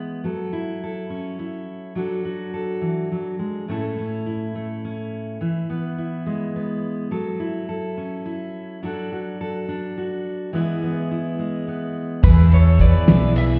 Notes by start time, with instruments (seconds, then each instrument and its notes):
Already playing: steel-string acoustic guitar E3 G#3 B3 E4
0.24 steel-string acoustic guitar F#3 A4
0.53 steel-string acoustic guitar E4
0.84 steel-string acoustic guitar A4
1.10 steel-string acoustic guitar C#4
1.39 steel-string acoustic guitar E4
1.95 steel-string acoustic guitar F#3 D4 F#4 A4
2.25 steel-string acoustic guitar F#4
2.54 steel-string acoustic guitar A4
2.81 steel-string acoustic guitar E3
3.12 steel-string acoustic guitar F#3
3.39 steel-string acoustic guitar G#3
3.68 steel-string acoustic guitar A2 A3 C#4 E4 A4
3.98 steel-string acoustic guitar C#4
4.26 steel-string acoustic guitar E4
4.55 steel-string acoustic guitar A3
4.85 steel-string acoustic guitar C#4
5.41 steel-string acoustic guitar E3 E4
5.70 steel-string acoustic guitar B3
5.98 steel-string acoustic guitar E4
6.26 steel-string acoustic guitar G#3
6.56 steel-string acoustic guitar B3
7.11 steel-string acoustic guitar F#3 A4
7.40 steel-string acoustic guitar E4
7.69 steel-string acoustic guitar A4
7.97 steel-string acoustic guitar C#4
8.26 steel-string acoustic guitar E4
8.83 steel-string acoustic guitar F#3 D4 F#4 A4
9.12 steel-string acoustic guitar F#4
9.41 steel-string acoustic guitar A4
9.68 steel-string acoustic guitar D4
9.98 steel-string acoustic guitar F#4
10.53 steel-string acoustic guitar E3 G#3 B3 E4 G#4
10.83 steel-string acoustic guitar B3
11.11 steel-string acoustic guitar E4
11.39 steel-string acoustic guitar G#3
11.68 steel-string acoustic guitar B3
12.22 upright piano E2 E3 G#3 B3 E4 B4 E5, fingered electric bass E2, twelve-string acoustic guitar E3 B3, fiddle G#4, clean electric guitar B4, tonewheel organ B4 E5 G#5 E6, kick, ride, tambourine
12.26 twelve-string acoustic guitar E4 G#4
12.51 fiddle A4, clean electric guitar C#5, ride
12.79 twelve-string acoustic guitar E3 B3 E4 G#4, fiddle B4, clean electric guitar D5, kick, ride, tambourine
13.06 fingered electric bass B1, twelve-string acoustic guitar E3 B3 E4 G#4, snare, ride, tambourine
13.34 fiddle B4, clean electric guitar E5, ride, tambourine